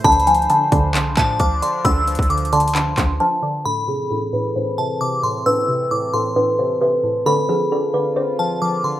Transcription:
Already playing: C5
0.04 D2 D3 F3 D4 A5 B5, kick, closed hi-hat
0.12 closed hi-hat
0.20 closed hi-hat
0.27 F3 G#5, closed hi-hat
0.35 closed hi-hat
0.42 closed hi-hat
0.50 D3 A5, closed hi-hat
0.72 D2 D3 B5, kick, closed hi-hat
0.94 C2 D3 C6, clap, closed hi-hat
1.17 A2 F3 A5, kick, clap, closed hi-hat
1.40 D2 F3 D6, kick, closed hi-hat
1.62 D3 C6, closed hi-hat
1.85 D2 D3 B5 E6, kick, closed hi-hat
2.08 F3, closed hi-hat
2.15 D2, kick, closed hi-hat
2.23 closed hi-hat
2.30 D3 D6, closed hi-hat
2.38 closed hi-hat
2.45 closed hi-hat
2.53 D3 A5 C6, closed hi-hat
2.60 closed hi-hat
2.68 closed hi-hat
2.75 D3 B5, clap, closed hi-hat
2.98 D2 F3 C6, kick, clap, closed hi-hat
3.20 F3 A5
3.43 D3
3.65 A2 E3 C4 A4 B5
3.88 C3 G#4
4.10 A2 A4
4.33 A2 B4
4.56 A2 C5
4.78 C3 A5
5.01 C3 D6
5.23 A2 C6
5.46 A2 B4 E6
5.68 C3
5.91 A2 D6
6.14 A2 A4 C6
6.36 A2 B4
6.59 C3 C5
6.81 C3 B4
7.04 A2
7.26 D3 F4 A4 B5
7.49 F3 G#4
7.72 D3 A4
7.94 D3 B4
8.16 D3 C5
8.39 F3 A5
8.62 F3 D6
8.84 D3 C6

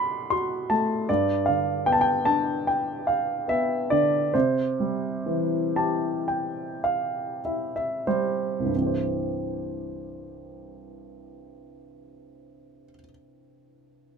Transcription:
Already playing: D3 A3 F#4 A4 A5 B5 C6 D6
0.30 F#4 C6
0.70 A3 A5
1.09 G2 D5
1.46 D3 F5
1.86 B3 G5
1.92 A5
2.01 G5
2.25 D4 A5
2.67 G5
3.07 F5
3.48 B3 E5
3.90 D3 D5
4.34 C3 C5
4.80 G3
5.26 E3
5.76 G4 A5
6.28 G5
6.84 F5
7.45 E4 E5
7.76 E5
8.07 G3 C5
8.60 C2
8.65 G2
8.71 E3
8.76 C4
8.82 G4
8.87 C5

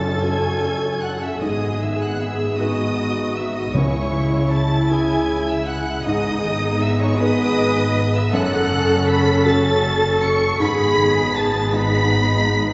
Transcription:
Already playing: F#2 C#3 C#4 A4 A5 A6
0.22 C#4 F#4 A4 G#5 G#6
0.62 A4
1.01 F#4 F#5 F#6
1.23 E5 E6
1.41 G#1 G#2 G#3 B3 G#4 D#5 D#6
1.81 D#3 E5 E6
2.01 F#5 F#6
2.20 B3 E5 E6
2.58 B3 D#4 F#4 G#4 D#5 D#6
2.97 B4
3.35 D#4 E5 E6
3.54 D#5 D#6
3.74 C#2 C#3 E4 C#5 C#6
4.12 G#3
4.51 C#4 A5 A6
4.91 C#4 E4 G#4 G#5 G#6
5.29 G#4
5.48 E5 E6
5.66 E4 F#5 F#6
6.05 G#1 G#2 B3 D#4 G#4 D#5 D#6
6.44 D#3
6.82 B3 E5 E6
7.01 C#5 C#6
7.18 B3 D#4 G#4 B4 D#6
7.22 D#5
7.58 G#4
7.95 D#4
8.15 E5 E6
8.32 F#1 F#2 C#4 A4 F#5 F#6
8.70 C#3
9.07 C#4 B5 B6
9.45 C#4 F#4 A4 A5 A6
9.82 A4
10.21 F#4 C#6 C#7
10.60 G#1 G#2 G#3 B3 G#4 B5 B6
10.97 D#3
11.36 B3 A5 A6
11.73 B3 D#4 G#4 B5 B6
12.12 G#4
12.51 D#4

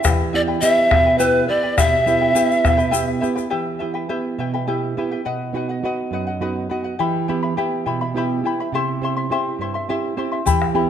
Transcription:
0.04 E3 E4 G4 B4 E5 G5, bombo rim, bombo low, shaker
0.33 B3 E4 G4 B4 D5 E5 G5
0.47 E4 B4 G5
0.61 B3 E4 G4 B4 E5 G5, shaker
0.90 B2 E4 B4 E5 G5, bombo rim, bombo low
1.05 E4 B4 G5, bombo rim
1.18 B3 E4 G4 B4 E5 G5, shaker
1.48 B3 E4 G4 B4 D5 E5 G5
1.63 E4 B4 G5
1.77 B2 E4 G4 B4 E5 G5, bombo rim, bombo low, shaker
2.06 B3 E4 G4 B4 E5 G5, shaker
2.21 E4 B4 G5, bombo rim
2.35 B3 E4 G4 B4 E5 G5, shaker
2.51 shaker
2.64 B2 E4 B4 E5 G5, bombo rim, bombo low, shaker
2.77 E4 B4 G5, shaker
2.91 B3 E4 G4 B4 E5 G5, bombo rim, shaker
3.08 bombo rim
3.21 B3 E4 G4 B4 E5 G5, shaker
3.36 E4 B4 G5, bombo rim, shaker
3.50 E3 E4 G4 B4 E5 G5
3.79 B3 E4 G4 B4 E5 G5
3.94 E4 B4 G5
4.09 B3 E4 G4 B4 E5 G5
4.38 B2 E4 B4 E5 G5
4.54 E4 B4 G5
4.67 B3 E4 G4 B4 E5 G5
4.97 B3 E4 G4 B4 E5 G5
5.11 E4 B4 G5
5.25 B2 B4 D#5 F#5
5.53 B3 D#4 F#4 B4 D#5 F#5
5.69 D#5 F#5
5.83 B3 D#4 F#4 B4 D#5 F#5
6.11 F#2 B4 D#5 F#5
6.27 D#5 F#5
6.41 B3 D#4 F#4 B4 D#5 F#5
6.70 B3 D#4 F#4 B4 D#5 F#5
6.84 D#5 F#5
6.99 E3 E4 G4 E5 G5 B5
7.28 B3 E4 G4 E5 G5 B5
7.43 E4 E5 B5
7.57 B3 E4 G4 E5 G5 B5
7.86 B2 E4 E5 G5 B5
8.01 E4 E5 B5
8.14 B3 E4 G4 E5 G5 B5
8.43 B3 E4 G4 E5 G5 B5
8.60 E4 E5 B5
8.72 C3 E4 G4 C5 E5 C6
9.02 C4 E4 G4 C5 E5 C6
9.17 E4 E5 C6
9.30 C4 E4 G4 C5 E5 C6
9.59 G2 E4 C5 E5 C6
9.74 E4 E5 C6
9.89 C4 E4 G4 C5 E5 C6
10.17 C4 E4 G4 C5 E5 C6
10.32 E4 E5 C6
10.46 E3 E4 G4 E5 G5 B5, bombo low, shaker
10.62 bombo rim
10.74 B3 E4 G4 E5 G5 B5

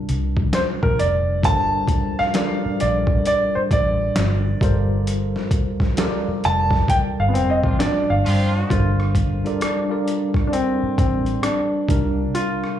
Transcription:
Already playing: C3 G3 D4 F4 A5
0.09 C2, closed hi-hat
0.37 kick
0.53 C5, snare, closed hi-hat
0.83 A#1 A#4, kick
0.99 F1 D5, closed hi-hat
1.42 G1 G3 D4 F4 A4 A#4 C5 A5, kick, closed hi-hat
1.88 kick, closed hi-hat
2.19 F5, muted fingered electric bass stroke, snare
2.34 G3 D4 F4 A4 A#4 D5, snare, closed hi-hat
2.66 muted fingered electric bass stroke
2.80 A#1 D5, closed hi-hat
3.07 kick
3.26 D5, closed hi-hat
3.55 C5, muted fingered electric bass stroke
3.71 A1 D5, kick, closed hi-hat
4.16 G1, snare, closed hi-hat
4.61 G1 G3 F4 A4 A#4 C5, kick, closed hi-hat
5.07 closed hi-hat
5.36 snare
5.51 kick, closed hi-hat
5.80 muted fingered electric bass stroke, kick, snare
5.97 G3 F4 A4 A#4 D5, snare, closed hi-hat
6.28 muted fingered electric bass stroke
6.44 F1 A5, closed hi-hat
6.71 kick, snare
6.88 G5, kick, closed hi-hat
7.20 G1 F5
7.29 B3
7.34 F1 C4, closed hi-hat
7.50 D#5
7.63 A1 F3 C4 D4 F4, kick
7.79 D4 D5, muted fingered electric bass stroke, snare, closed hi-hat
8.10 G1 F5
8.25 G2 F3 C4 D4 F4, open hi-hat
8.70 G1 G3 D4 F4 A4 A#4 C5, kick, closed hi-hat
9.00 cross-stick
9.15 kick, closed hi-hat
9.44 G3 D4 F4 A4 A#4 D5, closed hi-hat
9.61 D4, cross-stick, closed hi-hat
9.88 G3 D4 F4 A4 A#4 D5
10.08 closed hi-hat
10.34 kick, cross-stick
10.47 D4
10.53 C4, closed hi-hat
10.83 muted fingered electric bass stroke
10.98 A1 C4, kick, closed hi-hat
11.26 closed hi-hat
11.43 D4, cross-stick, closed hi-hat
11.88 C2 C3 G3 D4 D#4 A#4, kick, closed hi-hat
11.97 F4
12.35 F4, closed hi-hat
12.64 cross-stick

